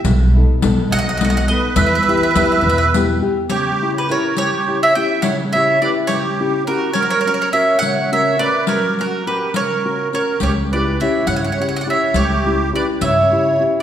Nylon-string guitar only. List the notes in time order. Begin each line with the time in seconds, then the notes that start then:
0.05 B2
0.36 B3 D#4 A4
0.63 B3 D#4 A4
0.91 F#3
1.22 B3 D#4 A4
1.50 B3 D#4 A4
1.77 E3
2.08 B3 E4 G4
2.35 B3 E4 G4
2.64 B2
2.95 B3 E4 G4
3.22 B3 E4 G4
3.51 C#3
3.82 C#4 E4 G4
4.10 C#4 E4 G4
4.38 C#3
4.68 C#4 E4 G4
4.96 C#4 E4 G4
5.23 C#3
5.55 C#4 E4 G4
5.81 C#4 E4 G4
6.10 C#3
6.40 C#4 E4 G4
6.67 C#4 E4 G4
6.96 F#3
7.26 C#4 F#4 A#4
7.53 C#4 F#4 A#4
7.81 C#3
8.12 C#4 F#4 A#4
8.39 C#4 F#4 A#4
8.67 F#3
8.99 C#4 F#4 A#4
9.26 C#4 F#4 A#4
9.54 C#3
9.85 C#4 F#4 A#4
10.13 C#4 F#4 A#4
10.41 C#3
10.73 C#4 E4 G4
11.01 C#4 E4 G4
11.28 C#3
11.60 C#4 E4 G4
11.86 C#4 E4 G4
12.14 C#3
12.45 C#4 E4 G4
12.73 C#4 E4 G4
13.01 C#3
13.31 C#4 E4 G4
13.59 C#4 E4 G4